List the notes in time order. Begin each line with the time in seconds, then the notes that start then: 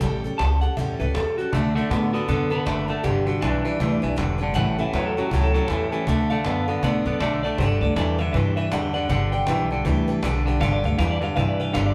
Already playing: A4
0.00 A1 A2 E3 G3 C#4 G4 A4, cajon bass
0.24 G3 C#4 G4 A4
0.38 C#2 G3 C#4 G4 A5, cajon slap
0.42 A4
0.61 G3 C#4 G4 A4 F#5
0.77 E2 A2 E3 G3 C#4 G4 A4 E5, cajon bass
1.00 C#2 G3 C#4 G4 A4 B4, cajon slap
1.14 E2 G3 C#4 G4 A4, cajon slap
1.38 G3 C#4 F#4 G4 A4
1.53 D2 D3 A3 D4 F#4 A4, cajon bass
1.75 D3 A3 D4 F#4 A4
1.90 A2 D3 A3 B3 D4 F#4 A4, cajon slap
2.13 D3 B3 D4 F#4 A4
2.28 F#2 D3 A3 B3 D4 F#4 A4, cajon bass
2.50 D3 B3 D4 F#4 A4 B4, cajon slap
2.66 F#1 D3 A3 D4 F#4 A4, cajon slap
2.88 D3 A3 D4 F#4 A4
3.04 G1 G2 D3 G3 D4 G4 B4, cajon bass
3.25 G2 D3 D4 F#4 G4 B4
3.41 B1 G2 E3 G3 D4 G4 B4, cajon slap
3.64 G2 E3 D4 G4 B4
3.80 D2 G2 E3 G3 D4 G4 B4, cajon bass
4.02 B1 G2 E3 D4 G4 B4, cajon slap
4.16 E1 G2 D3 G3 D4 G4 B4, cajon slap
4.38 G2 D4 G4 B4
4.43 D3
4.54 A1 A2 E3 G3 C#4 G4 A4 F#5, cajon bass
4.78 A2 E3 G3 C#4 G4 A4 E5
4.93 E2 A2 F#3 G3 C#4 G4 A4 B4, cajon slap
5.06 A4
5.17 A2 F#3 G3 C#4 F#4 G4 A4
5.31 C#2 A2 E3 F#3 G3 C#4 E4 G4 A4, cajon bass
5.43 A4
5.53 A2 F#3 G3 C#4 G4 A4, cajon slap
5.68 E2 A2 E3 G3 C#4 G4 A4, cajon slap
5.92 A2 E3 G3 C#4 G4 A4
6.07 D2 D3 A3 D4 F#4 A4, cajon bass
6.30 D3 A3 D4 F#4 A4 F5
6.45 F#2 D3 A3 B3 D4 F#4 A4, cajon slap
6.68 D3 B3 D4 F#4 A4
6.83 A2 D3 A3 B3 D4 F#4 A4 D5, cajon bass
7.05 F#2 D3 B3 D4 F#4 A4, cajon slap
7.20 B1 D3 A3 D4 F#4 A4 D5, cajon slap
7.43 D3 A3 F#4 A4 D5
7.47 D4
7.58 G1 G2 D3 G3 D4 G4 A4 D5, cajon bass
7.62 B4
7.81 D2 D4 G4 A4 B4 D5, cajon slap
7.96 E2 G2 E3 G3 D4 G4 A4 B4 D5, cajon slap
8.18 G2 D3 D4 G4 B4 E5, cajon slap
8.32 G2 E3 G3 D4 G4 B4 E5, cajon bass
8.37 B4
8.56 D4 G4 B4 E5, cajon slap
8.72 E2 G2 D3 G3 D4 G4 B4 D5 F#5, cajon slap
8.93 G2 D3 D4 G4 B4 D5 F#5, cajon slap
9.09 G1 G2 D3 G3 D4 G4 B4 D5 F#5, cajon bass
9.32 D4 G4 B4 G5, cajon slap
9.47 B1 G2 E3 G3 D4 G4 B4, cajon slap
9.70 G2 D3 D4 G4 B4, cajon slap
9.85 D2 G2 E3 G3 D4 G4 B4, cajon bass
10.08 D4 G4 B4, cajon slap
10.23 B1 G2 D3 G3 D4 G4 B4, cajon slap
10.46 G2 D3 D4 G4 B4, cajon slap
10.60 G1 G2 D3 G3 D4 G4 B4 F5, cajon bass
10.73 D5
10.83 D2 D4 G4 B4 F5, cajon slap
10.98 E2 G2 E3 G3 D4 G4 F5, cajon slap
11.02 B4
11.11 D5
11.21 G2 D3 D4 G4 B4 F5, cajon slap
11.36 G2 E3 G3 D4 G4 B4 F5, cajon bass
11.48 D5
11.60 D4 G4 B4 F5, cajon slap
11.73 G1 G2 D3 G3 D4 G4 B4 F5, cajon slap
11.86 D5